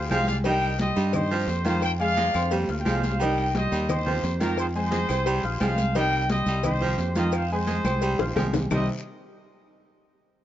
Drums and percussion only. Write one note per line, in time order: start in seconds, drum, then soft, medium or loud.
0.10 cowbell medium
0.10 high conga medium
0.10 low timbale medium
0.10 low agogo loud
0.10 short guiro medium
0.10 claves medium
0.10 maracas soft
0.27 cowbell medium
0.27 high conga medium
0.27 low agogo medium
0.27 short guiro medium
0.27 maracas medium
0.44 cowbell loud
0.44 low agogo medium
0.44 long guiro medium
0.44 maracas loud
0.62 high conga soft
0.62 low agogo loud
0.62 claves medium
0.62 maracas soft
0.79 cowbell medium
0.79 high conga loud
0.79 low timbale medium
0.79 short guiro medium
0.79 maracas soft
0.96 short guiro medium
0.96 maracas medium
1.13 cowbell loud
1.13 high conga soft
1.13 low conga medium
1.13 low agogo loud
1.13 long guiro medium
1.13 claves medium
1.13 maracas loud
1.30 high conga soft
1.30 low agogo medium
1.30 maracas soft
1.48 cowbell medium
1.48 high conga soft
1.48 low timbale medium
1.48 short guiro medium
1.48 maracas soft
1.65 cowbell medium
1.65 high conga medium
1.65 low agogo loud
1.65 short guiro medium
1.65 maracas medium
1.82 cowbell loud
1.82 low agogo loud
1.82 long guiro medium
1.82 claves medium
1.82 maracas loud
1.99 high conga soft
1.99 maracas soft
2.17 cowbell medium
2.17 high conga loud
2.17 high timbale loud
2.17 low agogo medium
2.17 short guiro medium
2.17 maracas soft
2.29 high timbale medium
2.34 cowbell medium
2.34 low agogo medium
2.34 short guiro medium
2.34 claves medium
2.34 maracas medium
2.40 high timbale loud
2.51 cowbell loud
2.51 high conga soft
2.51 low timbale loud
2.51 long guiro medium
2.51 maracas loud
2.64 low timbale medium
2.68 cowbell medium
2.68 high conga soft
2.68 maracas soft
2.75 low timbale medium
2.86 cowbell medium
2.86 high conga medium
2.86 low timbale medium
2.86 low agogo loud
2.86 short guiro medium
2.86 claves medium
2.86 maracas soft
2.97 low timbale loud
3.03 cowbell medium
3.03 high conga medium
3.03 low agogo medium
3.03 short guiro medium
3.03 maracas medium
3.10 low timbale medium
3.21 cowbell loud
3.21 low agogo medium
3.21 long guiro medium
3.21 maracas loud
3.37 high conga soft
3.37 low agogo loud
3.37 claves medium
3.37 maracas soft
3.54 cowbell medium
3.54 high conga loud
3.54 low timbale medium
3.54 short guiro medium
3.54 maracas soft
3.72 short guiro medium
3.72 maracas medium
3.89 cowbell loud
3.89 high conga soft
3.89 low conga medium
3.89 low agogo loud
3.89 long guiro medium
3.89 claves medium
3.89 maracas loud
4.07 high conga soft
4.07 low conga medium
4.07 low agogo medium
4.07 maracas soft
4.23 cowbell medium
4.23 high conga soft
4.23 low timbale medium
4.23 short guiro medium
4.23 maracas soft
4.40 cowbell medium
4.40 high conga medium
4.40 low agogo medium
4.40 short guiro medium
4.40 maracas medium
4.58 cowbell loud
4.58 high conga soft
4.58 low agogo loud
4.58 long guiro medium
4.58 claves medium
4.58 maracas medium
4.75 high conga soft
4.75 maracas soft
4.92 cowbell medium
4.92 high conga loud
4.92 low timbale medium
4.92 low agogo medium
4.92 short guiro medium
4.92 maracas soft
5.09 cowbell medium
5.09 low agogo medium
5.09 short guiro medium
5.09 claves medium
5.09 maracas medium
5.26 cowbell loud
5.26 high conga soft
5.26 long guiro medium
5.26 maracas loud
5.43 cowbell medium
5.43 high conga soft
5.43 maracas soft
5.60 cowbell medium
5.60 high conga medium
5.60 low timbale medium
5.60 low agogo loud
5.60 short guiro medium
5.60 claves medium
5.60 maracas soft
5.78 cowbell medium
5.78 high conga medium
5.78 low agogo medium
5.78 short guiro medium
5.78 maracas medium
5.95 cowbell loud
5.95 high conga soft
5.95 low agogo medium
5.95 long guiro medium
5.95 maracas medium
6.12 high conga soft
6.12 low agogo loud
6.12 claves medium
6.12 maracas soft
6.29 cowbell medium
6.29 high conga loud
6.29 low timbale medium
6.29 short guiro medium
6.29 maracas soft
6.46 short guiro medium
6.46 maracas medium
6.63 cowbell loud
6.63 high conga soft
6.63 low conga medium
6.63 low agogo loud
6.63 long guiro medium
6.63 claves medium
6.63 maracas loud
6.81 high conga soft
6.81 low conga medium
6.81 low agogo medium
6.81 maracas soft
6.98 cowbell medium
6.98 high conga soft
6.98 low timbale medium
6.98 short guiro medium
6.98 maracas soft
7.15 cowbell medium
7.15 high conga medium
7.15 low agogo medium
7.15 short guiro medium
7.15 maracas medium
7.32 cowbell loud
7.32 low agogo loud
7.32 long guiro medium
7.32 claves medium
7.32 maracas loud
7.50 high conga soft
7.50 maracas soft
7.67 cowbell medium
7.67 high conga loud
7.67 low timbale medium
7.67 low agogo medium
7.67 short guiro medium
7.67 maracas soft
7.84 cowbell medium
7.84 high conga loud
7.84 low agogo loud
7.84 short guiro medium
7.84 claves medium
7.84 maracas medium
8.02 cowbell loud
8.02 long guiro medium
8.02 maracas loud
8.19 cowbell medium
8.19 high bongo medium
8.19 low conga medium
8.19 high timbale loud
8.19 maracas soft
8.36 cowbell medium
8.36 high bongo medium
8.36 low conga medium
8.36 low timbale medium
8.36 low agogo loud
8.36 short guiro medium
8.36 claves medium
8.36 maracas soft
8.54 cowbell medium
8.54 low bongo loud
8.54 low conga loud
8.54 low timbale loud
8.54 low agogo medium
8.54 short guiro medium
8.54 maracas medium
8.71 low bongo medium
8.71 low conga loud
8.71 low timbale loud
8.71 long guiro loud
8.71 claves loud
8.71 maracas loud